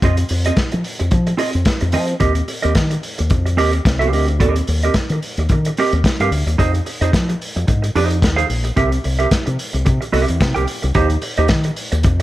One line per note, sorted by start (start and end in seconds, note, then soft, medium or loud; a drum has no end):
0.02 0.22 F2 medium
0.02 0.21 C4 medium
0.02 0.18 F4 medium
0.02 0.18 G#4 medium
0.02 0.17 D#5 medium
0.02 kick loud
0.02 closed hi-hat medium
0.17 muted clean electric guitar stroke soft
0.17 closed hi-hat soft
0.29 0.50 F2 medium
0.29 muted clean electric guitar stroke soft
0.29 open hi-hat medium
0.44 0.56 C4 soft
0.44 0.56 F4 medium
0.44 0.57 G#4 medium
0.44 0.57 D#5 medium
0.44 closed hi-hat soft
0.57 muted clean electric guitar stroke soft
0.57 kick loud
0.57 snare medium
0.57 closed hi-hat medium
0.71 0.82 F3 medium
0.71 muted clean electric guitar stroke medium
0.71 closed hi-hat soft
0.84 open hi-hat medium
0.99 1.09 F2 medium
0.99 muted clean electric guitar stroke soft
0.99 closed hi-hat soft
1.11 1.32 F3 medium
1.11 muted clean electric guitar stroke soft
1.11 kick loud
1.11 closed hi-hat soft
1.27 muted clean electric guitar stroke medium
1.27 closed hi-hat soft
1.37 1.57 C4 medium
1.37 1.52 F4 medium
1.37 1.52 G#4 loud
1.37 1.51 D#5 loud
1.37 open hi-hat medium
1.52 1.63 F2 medium
1.52 muted clean electric guitar stroke soft
1.52 closed hi-hat soft
1.65 muted clean electric guitar stroke soft
1.65 kick loud
1.65 snare loud
1.65 closed hi-hat medium
1.81 1.95 F2 medium
1.81 muted clean electric guitar stroke medium
1.81 closed hi-hat soft
1.92 2.14 F3 medium
1.92 2.12 C4 medium
1.92 2.08 F4 medium
1.92 2.07 G#4 medium
1.92 2.07 D#5 medium
1.92 open hi-hat medium
2.07 muted clean electric guitar stroke soft
2.07 closed hi-hat soft
2.20 2.41 D#2 loud
2.20 2.39 C4 medium
2.20 2.34 G4 medium
2.20 2.34 A#4 medium
2.20 2.34 D#5 medium
2.20 kick loud
2.20 closed hi-hat medium
2.35 muted clean electric guitar stroke soft
2.35 closed hi-hat soft
2.48 muted clean electric guitar stroke soft
2.48 open hi-hat medium
2.62 2.73 D#2 medium
2.62 2.74 C4 soft
2.62 2.74 G4 soft
2.62 2.75 A#4 medium
2.62 2.75 D#5 medium
2.62 closed hi-hat soft
2.75 2.96 D#3 medium
2.75 muted clean electric guitar stroke medium
2.75 kick loud
2.75 snare medium
2.75 closed hi-hat medium
2.90 muted clean electric guitar stroke soft
2.90 closed hi-hat soft
3.03 open hi-hat medium
3.18 3.31 D#2 medium
3.18 muted clean electric guitar stroke soft
3.18 closed hi-hat soft
3.30 3.59 F2 medium
3.30 muted clean electric guitar stroke soft
3.30 kick loud
3.30 closed hi-hat medium
3.46 muted clean electric guitar stroke medium
3.46 closed hi-hat soft
3.57 3.79 D#2 medium
3.57 3.76 C4 medium
3.57 3.73 G4 medium
3.57 3.73 A#4 medium
3.57 3.72 D#5 loud
3.57 open hi-hat medium
3.73 muted clean electric guitar stroke soft
3.73 closed hi-hat soft
3.85 4.13 C2 medium
3.85 muted clean electric guitar stroke soft
3.85 kick loud
3.85 snare loud
3.85 closed hi-hat medium
3.99 4.11 C4 medium
3.99 4.12 G4 medium
3.99 4.12 A#4 medium
3.99 4.13 F5 medium
3.99 closed hi-hat soft
4.12 4.41 D2 medium
4.12 4.28 C4 medium
4.12 4.28 G4 medium
4.12 4.27 A#4 medium
4.12 4.27 D#5 medium
4.12 open hi-hat medium
4.28 muted clean electric guitar stroke soft
4.28 closed hi-hat soft
4.40 4.61 D#2 loud
4.40 4.61 C4 medium
4.40 4.56 G4 medium
4.40 4.56 A#4 loud
4.40 4.55 D#5 medium
4.40 kick loud
4.40 closed hi-hat medium
4.56 muted clean electric guitar stroke medium
4.56 closed hi-hat soft
4.67 4.88 D#2 medium
4.67 muted clean electric guitar stroke soft
4.67 open hi-hat medium
4.82 4.95 C4 medium
4.82 4.95 G4 medium
4.82 4.95 A#4 medium
4.82 4.95 D#5 medium
4.82 closed hi-hat soft
4.94 muted fingered electric bass stroke soft
4.94 kick loud
4.94 snare medium
4.94 closed hi-hat medium
5.09 5.19 D#3 medium
5.09 muted clean electric guitar stroke soft
5.09 closed hi-hat soft
5.22 open hi-hat medium
5.37 5.46 D#2 medium
5.37 muted clean electric guitar stroke soft
5.37 closed hi-hat soft
5.49 5.70 D#3 medium
5.49 muted clean electric guitar stroke soft
5.49 kick loud
5.49 closed hi-hat medium
5.65 muted clean electric guitar stroke soft
5.65 closed hi-hat soft
5.77 5.96 C4 medium
5.77 5.94 G4 loud
5.77 5.94 A#4 medium
5.77 5.93 D#5 loud
5.77 open hi-hat medium
5.93 6.01 D#2 medium
5.93 muted clean electric guitar stroke soft
5.93 closed hi-hat soft
6.04 muted clean electric guitar stroke soft
6.04 kick loud
6.04 snare loud
6.04 closed hi-hat medium
6.20 6.29 G2 medium
6.20 6.31 C4 medium
6.20 6.31 G4 medium
6.20 6.32 A#4 medium
6.20 6.32 F5 medium
6.20 closed hi-hat soft
6.31 6.43 D2 medium
6.31 open hi-hat medium
6.46 6.55 D#2 medium
6.46 muted clean electric guitar stroke soft
6.46 closed hi-hat soft
6.58 6.79 F2 loud
6.58 6.77 D#4 medium
6.58 6.74 G#4 medium
6.58 6.73 C5 medium
6.58 6.73 D#5 medium
6.58 kick medium
6.58 closed hi-hat medium
6.74 muted clean electric guitar stroke soft
6.74 closed hi-hat soft
6.86 muted clean electric guitar stroke soft
6.86 open hi-hat medium
7.01 7.10 F2 loud
7.01 7.12 D#4 medium
7.01 7.12 G#4 medium
7.01 7.12 C5 medium
7.01 7.13 D#5 medium
7.01 closed hi-hat medium
7.13 7.34 F3 loud
7.13 muted clean electric guitar stroke soft
7.13 kick loud
7.13 snare medium
7.13 closed hi-hat medium
7.29 muted clean electric guitar stroke soft
7.29 closed hi-hat soft
7.42 open hi-hat medium
7.56 7.65 F2 medium
7.56 muted clean electric guitar stroke soft
7.56 closed hi-hat soft
7.67 7.89 G#2 medium
7.67 muted clean electric guitar stroke soft
7.67 kick medium
7.67 closed hi-hat soft
7.82 muted clean electric guitar stroke soft
7.82 closed hi-hat soft
7.95 8.23 F2 medium
7.95 8.16 D#4 loud
7.95 8.10 G#4 loud
7.95 8.10 C5 loud
7.95 8.09 D#5 loud
7.95 open hi-hat medium
8.10 muted clean electric guitar stroke soft
8.10 closed hi-hat soft
8.22 8.43 D#2 medium
8.22 muted clean electric guitar stroke soft
8.22 kick loud
8.22 snare loud
8.22 closed hi-hat medium
8.36 8.47 D#4 medium
8.36 8.47 G#4 medium
8.36 8.47 C5 medium
8.36 8.48 F5 medium
8.36 closed hi-hat soft
8.48 8.70 A#1 medium
8.48 muted clean electric guitar stroke soft
8.48 open hi-hat medium
8.64 muted clean electric guitar stroke soft
8.64 closed hi-hat soft
8.76 8.98 C2 medium
8.76 8.96 C4 medium
8.76 8.91 G4 medium
8.76 8.91 A#4 medium
8.76 8.90 E5 medium
8.76 kick medium
8.76 closed hi-hat medium
8.91 muted clean electric guitar stroke soft
8.91 closed hi-hat soft
9.04 9.25 C2 medium
9.04 muted clean electric guitar stroke soft
9.04 open hi-hat medium
9.19 9.29 C4 medium
9.19 9.30 G4 medium
9.19 9.30 A#4 medium
9.19 9.31 E5 medium
9.19 closed hi-hat soft
9.31 muted clean electric guitar stroke soft
9.31 muted fingered electric bass stroke soft
9.31 kick loud
9.31 snare medium
9.31 closed hi-hat medium
9.46 9.56 C3 medium
9.46 muted clean electric guitar stroke soft
9.46 closed hi-hat soft
9.59 open hi-hat medium
9.73 9.83 C2 medium
9.73 muted clean electric guitar stroke soft
9.73 closed hi-hat soft
9.85 9.98 C3 medium
9.85 muted clean electric guitar stroke soft
9.85 kick loud
9.85 closed hi-hat medium
10.01 muted clean electric guitar stroke medium
10.01 closed hi-hat soft
10.12 10.25 C2 medium
10.12 10.34 C4 loud
10.12 10.27 G4 medium
10.12 10.26 A#4 medium
10.12 10.26 E5 medium
10.12 open hi-hat medium
10.27 10.38 E2 medium
10.27 muted clean electric guitar stroke soft
10.27 closed hi-hat soft
10.40 10.52 C3 loud
10.40 muted clean electric guitar stroke soft
10.40 kick loud
10.40 snare loud
10.40 closed hi-hat medium
10.54 10.65 C2 medium
10.54 10.66 C4 medium
10.54 10.66 G4 medium
10.54 10.66 A#4 medium
10.54 10.67 G5 medium
10.54 closed hi-hat soft
10.67 muted clean electric guitar stroke soft
10.67 open hi-hat medium
10.82 10.92 C2 medium
10.82 muted clean electric guitar stroke soft
10.82 closed hi-hat soft
10.94 11.16 D#2 loud
10.94 11.14 D#4 medium
10.94 11.10 G4 medium
10.94 11.10 C5 medium
10.94 11.09 D#5 medium
10.94 kick loud
10.94 closed hi-hat medium
11.10 muted clean electric guitar stroke medium
11.10 closed hi-hat soft
11.22 muted clean electric guitar stroke soft
11.22 open hi-hat medium
11.37 11.47 D#2 loud
11.37 11.48 D#4 medium
11.37 11.48 G4 medium
11.37 11.49 C5 medium
11.37 11.49 D#5 medium
11.37 closed hi-hat medium
11.48 11.70 D#3 loud
11.48 muted clean electric guitar stroke soft
11.48 kick loud
11.48 snare loud
11.48 closed hi-hat medium
11.64 muted clean electric guitar stroke soft
11.64 closed hi-hat medium
11.76 open hi-hat medium
11.92 12.05 D#2 medium
11.92 muted clean electric guitar stroke medium
11.92 closed hi-hat soft
12.03 12.22 F2 medium
12.03 muted clean electric guitar stroke soft
12.03 kick loud
12.03 closed hi-hat medium